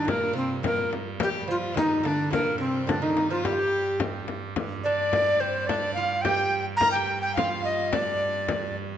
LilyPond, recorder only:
\new Staff \with { instrumentName = "Recorder" } { \time 2/4 \key g \minor \tempo 4 = 107 bes'8 c'8 bes'8 r8 | g'8 f'8 ees'8 d'8 | bes'8 c'8 d'16 ees'8 f'16 | g'4 r4 |
r8 d''4 c''8 | d''8 f''8 g''8. r16 | bes''16 g''8 g''16 f''8 ees''8 | d''4. r8 | }